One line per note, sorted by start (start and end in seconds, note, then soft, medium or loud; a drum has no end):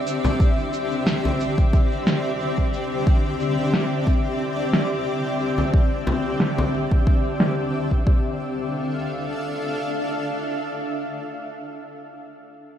0.00 8.03 D3 medium
0.00 8.03 C4 medium
0.00 8.03 G4 medium
0.00 8.03 D5 medium
0.00 8.03 E5 medium
0.07 cabasa medium
0.24 frame drum medium
0.24 cabasa soft
0.40 kick medium
0.40 cabasa soft
0.58 cabasa soft
0.73 cabasa medium
0.92 cabasa soft
1.07 snare medium
1.07 cabasa soft
1.25 frame drum medium
1.25 cabasa soft
1.40 cabasa medium
1.58 kick medium
1.58 cabasa soft
1.73 kick loud
1.73 cabasa soft
1.92 cabasa soft
2.07 snare medium
2.07 cabasa medium
2.25 cabasa soft
2.41 cabasa soft
2.58 kick soft
2.58 cabasa soft
2.74 cabasa medium
2.92 cabasa soft
3.07 kick loud
3.07 cabasa soft
3.25 cabasa soft
3.40 cabasa medium
3.58 cabasa soft
3.74 snare medium
3.74 cabasa soft
3.92 cabasa soft
4.07 kick medium
4.07 cabasa medium
4.25 cabasa soft
4.41 cabasa soft
4.59 cabasa soft
4.73 snare medium
4.73 cabasa medium
4.92 cabasa soft
5.07 cabasa soft
5.25 cabasa soft
5.40 cabasa medium
5.58 frame drum medium
5.58 cabasa soft
5.74 kick loud
5.74 cabasa soft
5.92 cabasa soft
6.07 frame drum medium
6.07 cabasa medium
6.25 cabasa soft
6.40 snare medium
6.40 cabasa soft
6.58 frame drum medium
6.74 cabasa medium
6.91 kick medium
6.91 cabasa soft
7.07 kick medium
7.07 cabasa soft
7.25 cabasa soft
7.40 snare medium
7.40 cabasa medium
7.58 cabasa soft
7.74 cabasa soft
7.91 kick medium
7.91 cabasa soft
8.07 11.46 D4 medium
8.07 11.46 A4 medium
8.07 11.46 E5 medium
8.07 11.46 F5 medium
8.07 kick medium